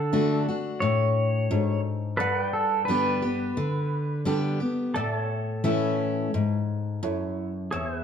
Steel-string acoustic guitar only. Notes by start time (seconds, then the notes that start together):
Already playing: D3
0.13 D3 A3 D4 F#4
0.48 D4 F#4
0.82 A2
1.51 G#2
2.20 G2
2.88 D3 G3 B3 G4
3.22 B3 G4
3.57 D3
4.25 D3 G3 B3 G4
4.60 B3 G4
4.96 A2
5.64 E3 A3 C#4 E4
6.34 G#2
7.03 F#2
7.72 E2